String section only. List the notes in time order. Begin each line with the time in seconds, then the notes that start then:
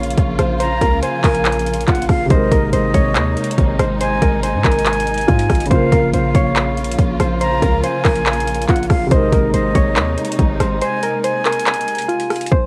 Already playing: C#3 F3 A#3 F4
2.30 C3 G#3 D#4
5.71 C#3 F3 A#3 F4
9.11 C3 G#3 D#4